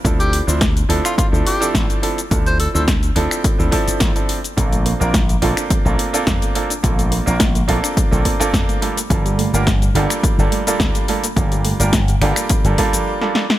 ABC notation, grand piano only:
X:1
M:4/4
L:1/16
Q:"Swing 16ths" 1/4=106
K:Gdor
V:1 name="Grand piano"
[F,CDEA]3 [F,CDEc] z2 [F,CDEA]3 [F,CDEA]2 [F,CDEA]3 [F,CDEA] z | [F,CDEA]3 [F,CDEc] z2 [F,CDEA]3 [F,CDEA] [F,CDEA]3 [F,CDEA]2 z | [B,CDFA]3 [B,CDFB] z2 [B,CDFA]3 [B,CDFA]2 [B,CDFA]3 [B,CDFA] z | [B,CDFA]3 [B,CDFB] z2 [B,CDFA]3 [B,CDFA]2 [B,CDFA]3 [G,B,DFA] z |
[G,B,DFA]3 [G,B,DFB] z2 [G,B,DFA]3 [G,B,DFA]2 [G,B,DFA]3 [G,B,DFA] z | [G,B,DFA]3 [G,B,DFB] z2 [G,B,DFA]3 [G,B,DFA] [G,B,DFA]3 [G,B,DFA]2 z |]